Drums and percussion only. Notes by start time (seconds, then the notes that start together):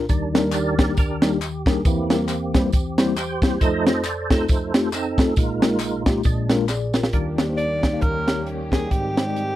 0.09 kick, closed hi-hat, tambourine
0.35 snare, closed hi-hat, tambourine
0.52 clap, closed hi-hat, tambourine
0.79 kick, snare, closed hi-hat, tambourine
0.97 kick, closed hi-hat, tambourine
1.22 snare, closed hi-hat, tambourine
1.41 clap, closed hi-hat, tambourine
1.66 kick, snare, closed hi-hat, tambourine
1.85 kick, closed hi-hat, tambourine
2.10 snare, closed hi-hat, tambourine
2.28 clap, closed hi-hat, tambourine
2.54 kick, snare, closed hi-hat, tambourine
2.72 kick, closed hi-hat, tambourine
2.98 snare, closed hi-hat, tambourine
3.17 clap, closed hi-hat, tambourine
3.42 kick, snare, closed hi-hat, tambourine
3.61 kick, closed hi-hat, tambourine
3.87 snare, closed hi-hat, tambourine
4.04 clap, closed hi-hat, tambourine
4.30 kick, snare, closed hi-hat, tambourine
4.48 kick, closed hi-hat, tambourine
4.74 snare, closed hi-hat, tambourine
4.93 clap, closed hi-hat, tambourine
5.18 kick, snare, closed hi-hat, tambourine
5.36 kick, closed hi-hat, tambourine
5.62 snare, closed hi-hat, tambourine
5.80 clap, closed hi-hat, tambourine
6.06 kick, snare, closed hi-hat, tambourine
6.23 kick, closed hi-hat, tambourine
6.50 snare, closed hi-hat, tambourine
6.69 snare, clap, tambourine
6.94 snare, tambourine
7.04 snare
7.13 kick, closed hi-hat
7.38 snare, closed hi-hat
7.58 closed hi-hat
7.83 kick, snare, closed hi-hat
8.01 kick, closed hi-hat
8.28 snare, closed hi-hat
8.47 closed hi-hat
8.72 kick, snare, closed hi-hat
8.91 kick, closed hi-hat
9.17 snare, closed hi-hat
9.36 closed hi-hat